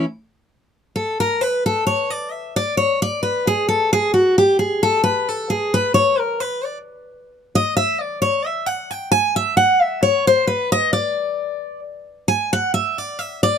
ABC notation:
X:1
M:3/4
L:1/8
Q:"Swing" 1/4=132
K:Dlyd
V:1 name="Steel-string acoustic guitar"
z4 A _B | B A c d e d | c d B G A G | F =G ^G A B A |
G B c _B =B d | z3 ^d e =d | c e f =g ^g e | f e c =c B ^d |
d4 z2 | g f e d e d |]